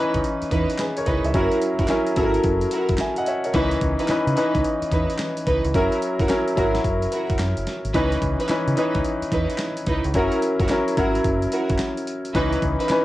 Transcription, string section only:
Already playing: D#4 E4 B4
0.51 D#4 E4 B4
1.07 D#4 E4 B4
1.34 E4 F#4 A#4
1.79 E4 F#4 A#4
2.17 E4 F#4 A#4
2.72 E4 F#4 A#4
3.54 D#4 E4 B4
3.99 D#4 E4 B4
4.36 D#4 E4 B4
4.91 D#4 E4 B4
5.47 D#4 E4 B4
5.74 E4 F#4 A#4
6.20 E4 F#4 A#4
6.57 E4 F#4 A#4
7.12 E4 F#4 A#4
7.94 D#4 E4 B4
8.39 D#4 E4 B4
8.77 D#4 E4 B4
9.32 D#4 E4 B4
9.87 D#4 E4 B4
10.14 E4 F#4 A#4
10.59 E4 F#4 A#4
10.97 E4 F#4 A#4
11.52 E4 F#4 A#4
12.35 D#4 E4 B4
12.80 D#4 E4 B4

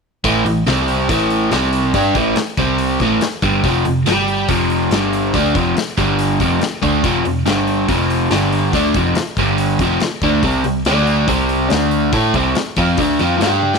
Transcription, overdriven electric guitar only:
0.24 A2 E3 A3
0.46 A2 E3
0.67 C3 G3 C4
1.09 A2 E3 A3
1.52 C3 G3 C4
1.95 G3 D4 G4
2.15 A2 E3 A3
2.37 muted overdriven electric guitar stroke
2.59 C3 G3 C4
3.01 A2 E3 A3
3.23 muted overdriven electric guitar stroke
3.43 G2 D3 G3
3.64 F2 C3 F3
3.85 F2 C3
4.05 G2 D3 G3
4.49 F2 C3 F3
4.92 G2 D3 G3
5.34 D3 A3 D4
5.55 F2 C3 F3
5.78 muted overdriven electric guitar stroke
5.98 G2 D3 G3
6.41 F2 C3 F3
6.61 muted overdriven electric guitar stroke
6.82 D3 A3 D4
7.04 F2 C3 F3
7.24 F2 C3
7.46 G2 D3 G3
7.88 F2 C3 F3
8.31 G2 D3 G3
8.74 D3 A3 D4
8.96 F2 C3 F3
9.18 muted overdriven electric guitar stroke
9.38 G2 D3 G3
9.81 F2 C3 F3
10.02 muted overdriven electric guitar stroke
10.24 D3 A3 D4
10.44 C3 G3 C4
10.65 C3 G3
10.86 D3 A3 D4
11.28 C3 G3 C4
11.70 D3 A3 D4
12.13 A3 E4 A4
12.35 C3 G3 C4
12.56 muted overdriven electric guitar stroke
12.78 F3 C4 F4
12.98 D3 A3 D4
13.20 F3 C4 F4
13.41 G3 D4 G4

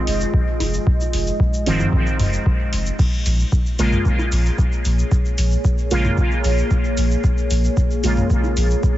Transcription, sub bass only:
0.07 F1
0.60 F1
1.13 F1
1.66 F1
2.19 F1
2.73 F1
3.26 A#1
3.79 A#1
4.32 A#1
4.85 A#1
5.38 A#1
5.91 A#1
6.44 A#1
6.97 A#1
7.50 A#1
8.04 A#1
8.57 A#1

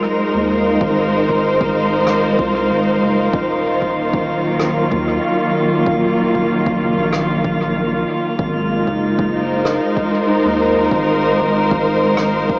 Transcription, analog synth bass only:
0.35 D#2
0.81 G#1
2.39 C2
2.71 G#1
3.02 F#1
3.34 D#1
4.92 D#2
5.87 D#1
6.81 F#1
6.98 A#1
8.39 G#1
8.87 F#1
10.45 D#2
10.91 G#1

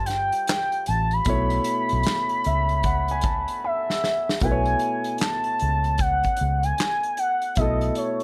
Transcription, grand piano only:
Already playing: G3 F4 A4 C5
1.26 B2 A3 E4
1.30 C#5
2.47 E5
2.86 F#5
3.11 G#5
3.25 A5
3.64 B5
4.41 B2 A3 E4 B4
4.51 C#5
7.57 B2 A3 E4 A4

